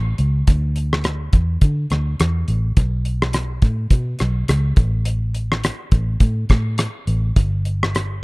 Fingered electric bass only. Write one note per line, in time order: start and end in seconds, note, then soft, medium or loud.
0.00 0.13 A1 medium
0.19 0.41 C#2 medium
0.47 1.29 D2 medium
1.33 1.56 E2 medium
1.62 1.85 D3 medium
1.91 2.14 D2 medium
2.20 2.43 E2 medium
2.48 2.71 A1 medium
2.77 3.59 B1 medium
3.63 3.86 A2 medium
3.91 4.14 B2 medium
4.21 4.43 B1 medium
4.49 4.72 C#2 medium
4.77 5.69 A1 loud
5.92 6.15 A1 medium
6.20 6.44 A2 medium
6.50 6.86 A2 medium
7.07 7.30 A1 medium
7.36 8.19 G1 medium